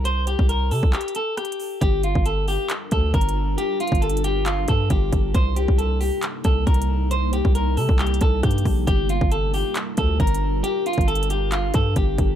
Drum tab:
HH |x-----x-----x-----o-----x-x-x-x-----x-x-x-o-----|x-----x-----x-----o-----x-----x-----x-x-x-------|x-----x-x-x-x-x-x-x-----x-----x-----x-----x-----|x-----x-----x-----o-----x-----x-----x-x-x-------|
CP |------------------------x-----------------------|------------------------x-----------------------|------------------------x-----------------------|------------------------x-----------------------|
SD |------------------------------------r-----------|------------------------------------------------|------------------------------------------------|------------------------------------------------|
BD |---------o-----------o--------------------------|o--------o--------------------o-----o-----------|---------o--------------------o-----o-----o-----|o--------o--------------------o-----o-----------|

HH |x-----x-----x-----o-----x-x-x-x-----x-x-x-o-----|x-----x-----x-----o-----x-----x-----x-x-x-------|x-----x-x-x-x-x-x-x-----x-----x-----x-----x-----|
CP |------------------------x-----------------------|------------------------x-----------------------|------------------------x-----------------------|
SD |------------------------------------r-----------|------------------------------------------------|------------------------------------------------|
BD |---------o-----------o--------o-----o-----o-----|o--------o--------------------o-----o-----------|---------o--------------------o-----o-----o-----|